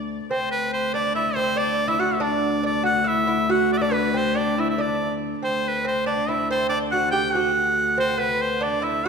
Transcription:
Already playing: D2
0.29 D2 C4 C5
0.51 B4
0.73 C5
0.94 D4 D5
1.15 E4 E5
1.35 C4 C5
1.56 D4 D5
1.88 E4 E5
2.00 F#4 F#5
2.14 E5
2.20 D4 D5
2.63 D4 D5
2.83 F#4 F#5
3.04 E4 E5
3.27 E4
3.49 F#4 F#5
3.73 D5
3.77 E5
3.81 D4 D5
3.91 B3 B4
4.14 C4 C5
4.35 D4 D5
4.58 E4 E5
4.70 E5
4.78 D4 D5
5.42 D2 C4 C5
5.68 B4
5.85 C4 C5
6.06 D4 D5
6.29 E4 E5
6.51 C4 C5
6.69 D4 D5
6.91 F#4 F#5
7.12 G4 G5
7.33 F#4 F#5
7.98 C4 C5
8.18 B3 B4
8.41 C5
8.61 D4 D5
8.82 E4 E5

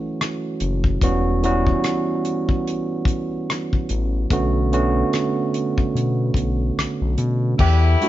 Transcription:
Already playing: E3 F#3 A3 C#4 F#4
0.21 cross-stick, closed hi-hat
0.60 F#1, closed hi-hat
0.84 kick
1.01 E1 E3 G3 B3 C#4 F#4, kick, closed hi-hat
1.43 E3 G3 B3 C#4 F#4, closed hi-hat
1.67 kick
1.84 cross-stick, closed hi-hat
2.25 closed hi-hat
2.49 kick
2.67 closed hi-hat
3.05 kick, closed hi-hat
3.50 cross-stick, closed hi-hat
3.73 kick
3.89 A1, closed hi-hat
4.30 B1 D3 A3 B3 C#4 F#4, kick, closed hi-hat
4.72 D3 A3 B3 C#4 F#4, closed hi-hat
5.13 cross-stick, closed hi-hat
5.54 closed hi-hat
5.78 kick
5.95 B2, closed hi-hat
6.34 B1, kick, closed hi-hat
6.77 B1, cross-stick, closed hi-hat
7.01 B1
7.18 B2, closed hi-hat
7.59 E2 A3 B3 E4 G4, kick, crash
8.01 G3 A3 D4 F#4, closed hi-hat

